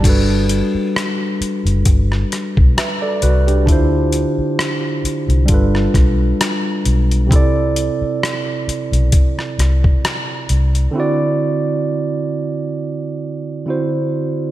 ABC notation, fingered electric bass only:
X:1
M:4/4
L:1/16
Q:"Swing 16ths" 1/4=66
K:G
V:1 name="Fingered electric bass" clef=bass
G,,,3 z4 F,,, G,,,2 z B,,, z2 C,,2 | D,,3 z4 C,, G,,,2 B,,,2 z2 B,,,2 | C,,3 z4 B,,, z2 C,,2 z2 C,,2 | z16 |]